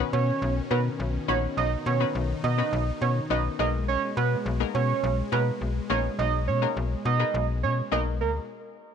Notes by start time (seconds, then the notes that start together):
Already playing: B2 D#3 C#4
0.00 B3 C#4 D#4 F#4 B4
0.13 B2 C#5
0.42 B1
0.71 B2 B3 C#4 D#4 F#4 A#4 B4
1.00 B1
1.28 A#1 B3 C#4 D#4 F#4 B4 C#5
1.57 B1 D#4 D#5
1.86 B2 C#5
2.00 B3 C#4 D#4 F#4 B4
2.15 B1
2.44 B2 D#5
2.58 B3 C#4 D#4 F#4 B4
2.73 B1
3.01 B2 C#5
3.30 B1 B3 C#4 D#4 F#4 B4 D#5
3.59 B1 G#3 A#3 B3 D#4 G#4 A#4 D#5
3.88 C#5
4.17 B2 B4
4.46 B1
4.60 A#3 B3 D#4 G#4 A#4
4.74 B2 C#5
5.03 B1
5.32 B2 A#3 B3 D#4 G#4 A#4 B4
5.61 B1
5.90 A#1 A#3 B3 D#4 G#4 A#4 C#5
6.19 B1 D#5
6.48 B2 C#5
6.62 A#3 B3 D#4 G#4 A#4
6.77 B1
7.05 B2 D#5
7.19 B3 D#4 G#4 A#4 B4
7.34 B1
7.63 B2 C#5
7.92 B1 A#3 B3 D#4 G#4 A#4 D#5
8.21 D2 A#4